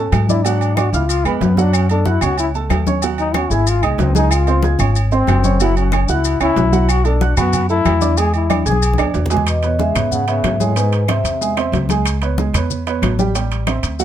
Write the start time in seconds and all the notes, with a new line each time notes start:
Already playing: A3 C#4 A4 A5
0.12 G#2, high conga, low timbale, low agogo, claves, maracas
0.29 D4 E4 D5 D6, high conga, maracas
0.45 F#3 D4 F#4 F#5, low agogo, maracas
0.61 high conga, low agogo, maracas
0.77 D4 F#4 D5 D6, high conga, low timbale, low agogo, claves, maracas
0.93 C#2 E4 F4 F5 F6, high conga, maracas
1.08 F4, high conga, low agogo, maracas
1.25 F2 G#3 B3 B4 B5, high conga, low agogo, claves, maracas
1.41 F#2 B3, high conga, low timbale, maracas
1.57 F#3 D4 F#4 F#5, high conga, maracas
1.73 C#4, high conga, low agogo, claves, maracas
1.89 A3 D4 A4 A5, high conga, low agogo, maracas
2.05 E4 F#4 F#5 F#6, high conga, low timbale, maracas
2.21 C#2 C#4 F#4 C#5 C#6, high conga, low conga, low agogo, claves, maracas
2.38 E4, high conga, low agogo, maracas
2.54 A3 A4 A5, high conga, maracas
2.70 D#2, high conga, low timbale, low agogo, claves, maracas
2.87 C#4 C#5 C#6, high conga, maracas
3.02 F#3 F#4 F#5, high conga, low agogo, maracas
3.18 D#4, high conga, low agogo, maracas
3.34 C#4 F#4 C#5 C#6, high conga, low timbale, low agogo, claves, maracas
3.50 G#1 E4 G#4 G#5 G#6, high conga, maracas
3.67 F4, high conga, low agogo, maracas
3.83 C2 G#3 D#4 D#5 D#6, high conga, low agogo, claves, maracas
3.98 C#2 C4, high conga, low timbale, maracas
4.15 G#3 D#4 G#4 G#5, high conga, maracas
4.31 F4, high conga, low agogo, claves, maracas
4.47 C4 C5 C6, high conga, low agogo, maracas
4.63 G#4 G#5 G#6, high conga, low timbale, maracas
4.79 G#1 C#4 C#5 C#6, high conga, low conga, low agogo, claves, maracas
4.95 high conga, low agogo, maracas
5.11 C4 C5 C6, high conga, maracas
5.27 F#1, high conga, low timbale, low agogo, claves, maracas
5.44 C#4 C#5 C#6, high conga, maracas
5.60 F#3 E4 F#4 F#5, high conga, low agogo, maracas
5.76 C#4, high conga, low agogo, maracas
5.92 C#4 C#5 C#6, high conga, low timbale, low agogo, claves, maracas
6.08 C#2 E4 F#4 F#5 F#6, high conga, maracas
6.24 high conga, low agogo, maracas
6.40 C#2 C#4 E4 C#5 C#6, high conga, low agogo, claves, maracas
6.56 B1, high conga, low timbale, maracas
6.72 F#3 F#4 F#5, high conga, maracas
6.89 F#4, low agogo, claves, maracas
7.05 A3 D4 A4 A5, high conga, low agogo, maracas
7.21 F#4 F#5 F#6, high conga, low timbale, maracas
7.37 F#2 B3 F#4 B4 B5, high conga, low conga, low agogo, claves, maracas
7.53 high conga, low conga, low agogo, maracas
7.69 A3 E4 A4 A5, high conga, maracas
7.85 E2, high conga, low timbale, low agogo, claves, maracas
8.01 D4 D5 D6, high conga, maracas
8.17 G#3 G#4 G#5, low agogo, maracas
8.34 E4, high conga, low agogo, maracas
8.50 D4 D5 D6, high conga, low timbale, low agogo, claves, maracas
8.65 B1 G#4 G#5 G#6, maracas
8.72 high conga
8.82 low agogo, maracas
8.93 high conga
8.98 D2 D4 D5 D6, high timbale, low agogo, claves, maracas
9.14 E2, low timbale, maracas
9.26 low conga
9.30 G#3 G#4 G#5, low timbale, maracas
9.37 low conga
9.47 B2 D#5, high conga, high timbale, claves, maracas
9.63 B3 B4 C#5, high conga, high timbale, maracas
9.79 C#3 G#3 G#4 E5 G#5, high conga, low timbale, maracas
9.95 G#2 B3 B4 C#5, high conga, low conga, high timbale, claves, maracas
10.11 C#3 F#5, high conga, low conga, maracas
10.28 C#3 B3 B4 C#5 E5, high conga, high timbale, maracas
10.43 G#2, high conga, high timbale, low timbale, claves, maracas
10.60 A2 G#3 G#4 C#5 G#5, high conga, maracas
10.76 G#2 G#3 G#4 B4 G#5, high conga, high timbale, maracas
10.93 high conga, high timbale, maracas
11.08 C3 C4 C5 E5, high conga, high timbale, low timbale, claves, maracas
11.24 E2, high conga, high timbale, maracas
11.41 G#3 G#4 G#5, high conga, maracas
11.57 C4 C5 E5, high conga, high timbale, claves, maracas
11.72 C#2, high conga, high timbale, low timbale, maracas
11.89 G#3 G#4 G#5, high conga, high timbale, maracas
12.05 high conga, high timbale, claves, maracas
12.22 B3 B4 C#5, high conga, high timbale, maracas
12.38 G#3 G#4 G#5, high conga, low timbale, maracas
12.53 E2 B3 B4 C#5, high conga, low conga, high timbale, claves, maracas
12.70 high conga, low conga, maracas
12.87 B3 B4 C#5, high conga, high timbale, maracas
13.02 A1, high conga, high timbale, low timbale, claves, maracas
13.19 G3 G4 G5, high conga, maracas
13.35 G3 G4 G5, high conga, high timbale, maracas
13.51 high conga, high timbale, maracas
13.67 C4 C5 E5, high conga, high timbale, low timbale, claves, maracas
13.83 D2, high conga, high timbale, maracas
13.99 F#3 F#4 F#5, high conga, maracas